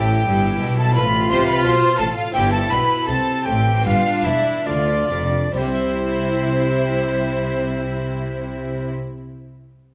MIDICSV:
0, 0, Header, 1, 8, 480
1, 0, Start_track
1, 0, Key_signature, 0, "major"
1, 0, Tempo, 665188
1, 691, Tempo, 696056
1, 1651, Time_signature, 4, 2, 24, 8
1, 1651, Tempo, 753769
1, 2611, Tempo, 814111
1, 3091, Tempo, 870827
1, 3571, Tempo, 887574
1, 5951, End_track
2, 0, Start_track
2, 0, Title_t, "Violin section"
2, 0, Program_c, 0, 48
2, 0, Note_on_c, 0, 79, 104
2, 573, Note_off_c, 0, 79, 0
2, 575, Note_on_c, 0, 81, 112
2, 691, Note_off_c, 0, 81, 0
2, 691, Note_on_c, 0, 83, 126
2, 920, Note_off_c, 0, 83, 0
2, 926, Note_on_c, 0, 84, 112
2, 1042, Note_off_c, 0, 84, 0
2, 1047, Note_on_c, 0, 83, 120
2, 1162, Note_off_c, 0, 83, 0
2, 1162, Note_on_c, 0, 84, 120
2, 1218, Note_off_c, 0, 84, 0
2, 1401, Note_on_c, 0, 81, 119
2, 1451, Note_off_c, 0, 81, 0
2, 1529, Note_on_c, 0, 77, 107
2, 1647, Note_on_c, 0, 79, 127
2, 1649, Note_off_c, 0, 77, 0
2, 1694, Note_off_c, 0, 79, 0
2, 1762, Note_on_c, 0, 81, 125
2, 1878, Note_off_c, 0, 81, 0
2, 1880, Note_on_c, 0, 83, 113
2, 2114, Note_on_c, 0, 81, 109
2, 2118, Note_off_c, 0, 83, 0
2, 2360, Note_off_c, 0, 81, 0
2, 2361, Note_on_c, 0, 79, 104
2, 2605, Note_off_c, 0, 79, 0
2, 2608, Note_on_c, 0, 77, 118
2, 2843, Note_on_c, 0, 76, 106
2, 2846, Note_off_c, 0, 77, 0
2, 3089, Note_off_c, 0, 76, 0
2, 3089, Note_on_c, 0, 74, 95
2, 3560, Note_off_c, 0, 74, 0
2, 3569, Note_on_c, 0, 72, 100
2, 5383, Note_off_c, 0, 72, 0
2, 5951, End_track
3, 0, Start_track
3, 0, Title_t, "Recorder"
3, 0, Program_c, 1, 74
3, 0, Note_on_c, 1, 79, 97
3, 556, Note_off_c, 1, 79, 0
3, 568, Note_on_c, 1, 81, 89
3, 679, Note_off_c, 1, 81, 0
3, 683, Note_on_c, 1, 83, 108
3, 922, Note_on_c, 1, 84, 101
3, 932, Note_off_c, 1, 83, 0
3, 1037, Note_off_c, 1, 84, 0
3, 1041, Note_on_c, 1, 83, 92
3, 1154, Note_off_c, 1, 83, 0
3, 1158, Note_on_c, 1, 84, 99
3, 1396, Note_on_c, 1, 81, 93
3, 1407, Note_off_c, 1, 84, 0
3, 1521, Note_off_c, 1, 81, 0
3, 1525, Note_on_c, 1, 77, 92
3, 1567, Note_off_c, 1, 77, 0
3, 1643, Note_on_c, 1, 79, 124
3, 1756, Note_off_c, 1, 79, 0
3, 1760, Note_on_c, 1, 81, 103
3, 1798, Note_off_c, 1, 81, 0
3, 1874, Note_on_c, 1, 83, 111
3, 2111, Note_off_c, 1, 83, 0
3, 2114, Note_on_c, 1, 81, 108
3, 2355, Note_on_c, 1, 79, 105
3, 2364, Note_off_c, 1, 81, 0
3, 2607, Note_off_c, 1, 79, 0
3, 2611, Note_on_c, 1, 77, 110
3, 2847, Note_on_c, 1, 76, 93
3, 2856, Note_off_c, 1, 77, 0
3, 3087, Note_on_c, 1, 74, 87
3, 3096, Note_off_c, 1, 76, 0
3, 3569, Note_off_c, 1, 74, 0
3, 3572, Note_on_c, 1, 74, 87
3, 3590, Note_on_c, 1, 72, 94
3, 3595, Note_off_c, 1, 74, 0
3, 5387, Note_off_c, 1, 72, 0
3, 5951, End_track
4, 0, Start_track
4, 0, Title_t, "Violin section"
4, 0, Program_c, 2, 48
4, 0, Note_on_c, 2, 67, 92
4, 558, Note_off_c, 2, 67, 0
4, 572, Note_on_c, 2, 69, 92
4, 690, Note_off_c, 2, 69, 0
4, 693, Note_on_c, 2, 71, 114
4, 748, Note_off_c, 2, 71, 0
4, 933, Note_on_c, 2, 72, 106
4, 1045, Note_off_c, 2, 72, 0
4, 1046, Note_on_c, 2, 71, 96
4, 1162, Note_on_c, 2, 72, 103
4, 1164, Note_off_c, 2, 71, 0
4, 1399, Note_off_c, 2, 72, 0
4, 1406, Note_on_c, 2, 69, 92
4, 1528, Note_off_c, 2, 69, 0
4, 1528, Note_on_c, 2, 65, 83
4, 1649, Note_off_c, 2, 65, 0
4, 1653, Note_on_c, 2, 67, 109
4, 1763, Note_on_c, 2, 69, 90
4, 1765, Note_off_c, 2, 67, 0
4, 1879, Note_off_c, 2, 69, 0
4, 1879, Note_on_c, 2, 71, 103
4, 2113, Note_on_c, 2, 69, 94
4, 2118, Note_off_c, 2, 71, 0
4, 2353, Note_on_c, 2, 67, 91
4, 2354, Note_off_c, 2, 69, 0
4, 2601, Note_off_c, 2, 67, 0
4, 2606, Note_on_c, 2, 65, 95
4, 2840, Note_on_c, 2, 64, 96
4, 2845, Note_off_c, 2, 65, 0
4, 3086, Note_on_c, 2, 62, 81
4, 3087, Note_off_c, 2, 64, 0
4, 3559, Note_off_c, 2, 62, 0
4, 3570, Note_on_c, 2, 64, 81
4, 5384, Note_off_c, 2, 64, 0
4, 5951, End_track
5, 0, Start_track
5, 0, Title_t, "Viola section"
5, 0, Program_c, 3, 48
5, 0, Note_on_c, 3, 64, 74
5, 201, Note_off_c, 3, 64, 0
5, 211, Note_on_c, 3, 64, 77
5, 682, Note_off_c, 3, 64, 0
5, 690, Note_on_c, 3, 65, 104
5, 1651, Note_off_c, 3, 65, 0
5, 1652, Note_on_c, 3, 64, 73
5, 2111, Note_off_c, 3, 64, 0
5, 2121, Note_on_c, 3, 60, 78
5, 2611, Note_off_c, 3, 60, 0
5, 2611, Note_on_c, 3, 62, 89
5, 3088, Note_on_c, 3, 65, 77
5, 3091, Note_off_c, 3, 62, 0
5, 3417, Note_off_c, 3, 65, 0
5, 3572, Note_on_c, 3, 64, 81
5, 5386, Note_off_c, 3, 64, 0
5, 5951, End_track
6, 0, Start_track
6, 0, Title_t, "Harpsichord"
6, 0, Program_c, 4, 6
6, 0, Note_on_c, 4, 45, 79
6, 0, Note_on_c, 4, 60, 68
6, 0, Note_on_c, 4, 64, 74
6, 182, Note_off_c, 4, 45, 0
6, 211, Note_on_c, 4, 43, 80
6, 426, Note_off_c, 4, 43, 0
6, 451, Note_on_c, 4, 47, 70
6, 652, Note_off_c, 4, 60, 0
6, 656, Note_off_c, 4, 64, 0
6, 668, Note_off_c, 4, 47, 0
6, 672, Note_on_c, 4, 60, 58
6, 684, Note_on_c, 4, 65, 66
6, 695, Note_on_c, 4, 45, 64
6, 904, Note_off_c, 4, 45, 0
6, 932, Note_on_c, 4, 48, 80
6, 1143, Note_off_c, 4, 48, 0
6, 1170, Note_on_c, 4, 47, 66
6, 1384, Note_off_c, 4, 47, 0
6, 1411, Note_on_c, 4, 45, 80
6, 1614, Note_off_c, 4, 60, 0
6, 1620, Note_off_c, 4, 65, 0
6, 1630, Note_off_c, 4, 45, 0
6, 1630, Note_on_c, 4, 60, 69
6, 1640, Note_on_c, 4, 64, 68
6, 1651, Note_on_c, 4, 43, 79
6, 1860, Note_off_c, 4, 43, 0
6, 1884, Note_on_c, 4, 47, 77
6, 2097, Note_off_c, 4, 47, 0
6, 2117, Note_on_c, 4, 48, 70
6, 2337, Note_off_c, 4, 48, 0
6, 2354, Note_on_c, 4, 45, 67
6, 2575, Note_off_c, 4, 60, 0
6, 2580, Note_off_c, 4, 64, 0
6, 2581, Note_off_c, 4, 45, 0
6, 2583, Note_on_c, 4, 59, 48
6, 2591, Note_on_c, 4, 65, 55
6, 2601, Note_on_c, 4, 43, 60
6, 2819, Note_off_c, 4, 43, 0
6, 2841, Note_on_c, 4, 40, 60
6, 3064, Note_off_c, 4, 40, 0
6, 3085, Note_on_c, 4, 38, 65
6, 3303, Note_off_c, 4, 38, 0
6, 3328, Note_on_c, 4, 41, 62
6, 3537, Note_off_c, 4, 59, 0
6, 3540, Note_off_c, 4, 65, 0
6, 3549, Note_off_c, 4, 41, 0
6, 3569, Note_on_c, 4, 48, 70
6, 3607, Note_on_c, 4, 55, 68
6, 3644, Note_on_c, 4, 60, 76
6, 3680, Note_on_c, 4, 64, 73
6, 3720, Note_on_c, 4, 72, 72
6, 5383, Note_off_c, 4, 48, 0
6, 5421, Note_off_c, 4, 55, 0
6, 5458, Note_off_c, 4, 60, 0
6, 5495, Note_off_c, 4, 64, 0
6, 5534, Note_off_c, 4, 72, 0
6, 5951, End_track
7, 0, Start_track
7, 0, Title_t, "Cello section"
7, 0, Program_c, 5, 48
7, 0, Note_on_c, 5, 45, 96
7, 200, Note_off_c, 5, 45, 0
7, 200, Note_on_c, 5, 43, 101
7, 439, Note_off_c, 5, 43, 0
7, 441, Note_on_c, 5, 47, 87
7, 682, Note_off_c, 5, 47, 0
7, 692, Note_on_c, 5, 45, 100
7, 923, Note_on_c, 5, 48, 93
7, 926, Note_off_c, 5, 45, 0
7, 1159, Note_on_c, 5, 47, 90
7, 1162, Note_off_c, 5, 48, 0
7, 1215, Note_off_c, 5, 47, 0
7, 1402, Note_on_c, 5, 45, 85
7, 1458, Note_off_c, 5, 45, 0
7, 1650, Note_on_c, 5, 43, 98
7, 1878, Note_off_c, 5, 43, 0
7, 1879, Note_on_c, 5, 47, 91
7, 1930, Note_off_c, 5, 47, 0
7, 2118, Note_on_c, 5, 48, 84
7, 2169, Note_off_c, 5, 48, 0
7, 2356, Note_on_c, 5, 45, 78
7, 2603, Note_off_c, 5, 45, 0
7, 2607, Note_on_c, 5, 43, 96
7, 2654, Note_off_c, 5, 43, 0
7, 2842, Note_on_c, 5, 40, 84
7, 2889, Note_off_c, 5, 40, 0
7, 3084, Note_on_c, 5, 38, 86
7, 3320, Note_off_c, 5, 38, 0
7, 3324, Note_on_c, 5, 41, 84
7, 3564, Note_off_c, 5, 41, 0
7, 3566, Note_on_c, 5, 48, 82
7, 5380, Note_off_c, 5, 48, 0
7, 5951, End_track
8, 0, Start_track
8, 0, Title_t, "Double bass section"
8, 0, Program_c, 6, 48
8, 0, Note_on_c, 6, 33, 80
8, 204, Note_off_c, 6, 33, 0
8, 213, Note_on_c, 6, 31, 87
8, 446, Note_off_c, 6, 31, 0
8, 453, Note_on_c, 6, 35, 86
8, 688, Note_off_c, 6, 35, 0
8, 696, Note_on_c, 6, 33, 103
8, 928, Note_off_c, 6, 33, 0
8, 930, Note_on_c, 6, 36, 89
8, 1165, Note_on_c, 6, 35, 87
8, 1166, Note_off_c, 6, 36, 0
8, 1221, Note_off_c, 6, 35, 0
8, 1406, Note_on_c, 6, 33, 85
8, 1461, Note_off_c, 6, 33, 0
8, 1648, Note_on_c, 6, 31, 87
8, 1877, Note_off_c, 6, 31, 0
8, 1880, Note_on_c, 6, 35, 80
8, 1931, Note_off_c, 6, 35, 0
8, 2118, Note_on_c, 6, 36, 85
8, 2169, Note_off_c, 6, 36, 0
8, 2360, Note_on_c, 6, 33, 85
8, 2604, Note_off_c, 6, 33, 0
8, 2610, Note_on_c, 6, 31, 93
8, 2657, Note_off_c, 6, 31, 0
8, 2842, Note_on_c, 6, 28, 67
8, 2889, Note_off_c, 6, 28, 0
8, 3090, Note_on_c, 6, 38, 78
8, 3322, Note_off_c, 6, 38, 0
8, 3327, Note_on_c, 6, 29, 72
8, 3566, Note_off_c, 6, 29, 0
8, 3571, Note_on_c, 6, 36, 74
8, 5386, Note_off_c, 6, 36, 0
8, 5951, End_track
0, 0, End_of_file